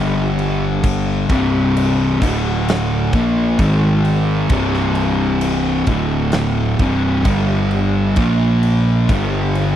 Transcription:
0.00 1.25 G1 loud
0.00 1.29 G2 medium
0.00 1.29 D3 medium
0.00 1.29 G3 loud
0.39 crash medium
0.84 kick loud
0.84 crash medium
1.29 2.17 C1 loud
1.29 2.20 C2 medium
1.29 2.20 G2 medium
1.29 2.20 C3 medium
1.29 kick loud
1.29 crash medium
1.76 crash medium
2.21 3.09 D1 medium
2.21 3.12 D2 medium
2.21 3.12 A2 medium
2.21 3.12 D3 loud
2.21 kick medium
2.21 crash medium
2.68 snare loud
2.68 crash medium
3.13 3.55 A#1 medium
3.13 3.58 A#2 medium
3.13 3.58 F3 loud
3.13 3.58 A#3 loud
3.13 kick loud
3.13 crash medium
3.59 4.47 G#1 medium
3.59 4.49 G#2 medium
3.59 4.50 D#3 loud
3.59 4.50 G#3 loud
3.59 kick loud
3.59 crash medium
4.05 crash medium
4.49 5.84 C1 medium
4.49 5.87 C2 medium
4.49 5.87 G2 loud
4.49 5.87 C3 loud
4.49 kick loud
4.49 crash medium
4.74 snare soft
4.95 crash medium
5.41 crash medium
5.87 6.75 D1 medium
5.87 6.79 D2 loud
5.87 6.79 A2 loud
5.87 6.79 D3 loud
5.87 kick loud
5.87 crash medium
6.32 snare loud
6.32 crash medium
6.79 7.22 C1 loud
6.79 7.25 C2 medium
6.79 7.24 G2 loud
6.79 7.25 C3 loud
6.79 kick loud
6.79 crash medium
7.25 8.13 G1 loud
7.25 8.16 G2 medium
7.25 8.16 D3 medium
7.25 8.16 G3 loud
7.25 kick loud
7.25 crash medium
7.71 crash medium
8.16 9.05 A#1 medium
8.16 9.08 A#2 loud
8.16 9.08 F3 loud
8.16 9.08 A#3 loud
8.16 kick loud
8.16 crash medium
8.63 crash medium
9.09 9.76 G1 medium
9.09 9.76 G2 medium
9.09 9.76 D3 loud
9.09 9.76 G3 loud
9.09 kick loud
9.09 crash medium
9.55 crash medium

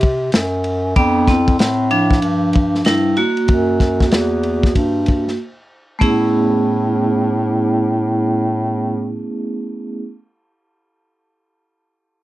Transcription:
0.00 0.30 C3 medium
0.00 kick medium
0.00 ride medium
0.32 0.93 F#2 medium
0.32 snare loud
0.32 hi-hat pedal soft
0.32 ride medium
0.64 ride medium
0.96 1.56 F2 loud
0.96 1.29 B3 medium
0.96 1.25 D4 medium
0.96 kick loud
0.96 ride medium
1.28 1.87 C4 medium
1.28 1.87 E4 soft
1.28 kick medium
1.28 snare soft
1.28 ride soft
1.48 kick medium
1.48 ride soft
1.59 2.19 A2 medium
1.59 snare medium
1.59 hi-hat pedal soft
1.59 ride medium
1.91 2.82 F3 medium
1.91 2.88 D4 medium
1.91 ride medium
2.11 kick medium
2.11 snare soft
2.22 2.82 G2 medium
2.22 ride medium
2.53 kick medium
2.53 ride medium
2.75 snare soft
2.85 3.21 G2 medium
2.85 3.15 G3 medium
2.85 3.18 E4 medium
2.85 snare medium
2.85 hi-hat pedal soft
2.85 ride medium
3.16 5.34 A#3 medium
3.16 5.34 F#4 medium
3.16 ride medium
3.37 ride soft
3.48 4.13 F#2 medium
3.48 kick loud
3.48 ride medium
3.80 kick medium
3.80 snare soft
3.80 ride soft
4.00 kick medium
4.00 snare soft
4.11 4.71 E2 medium
4.11 snare loud
4.11 hi-hat pedal soft
4.11 ride medium
4.43 ride medium
4.63 kick medium
4.63 snare soft
4.75 5.35 G2 medium
4.75 kick medium
4.75 ride medium
5.06 kick medium
5.06 ride medium
5.28 snare soft
5.99 9.30 A2 medium
5.99 9.99 A3 medium
5.99 9.99 B3 medium
5.99 10.00 C#4 medium
5.99 10.00 E4 medium
5.99 kick medium
5.99 ride medium
6.03 10.01 G#4 medium

